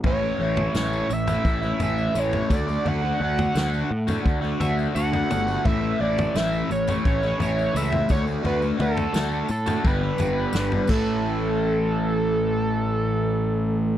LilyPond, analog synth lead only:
\new Staff \with { instrumentName = "Analog synth lead" } { \time 4/4 \key a \mixolydian \tempo 4 = 86 cis''4 cis''8 e''4 e''8 cis''8 d''8 | fis''2 r8 e''8 fis''4 | e''8 d''8 e''8 cis''8 cis''8 cis''8 e''8 cis''8 | b'8 a'4 a'8 b'4. a'8~ |
a'1 | }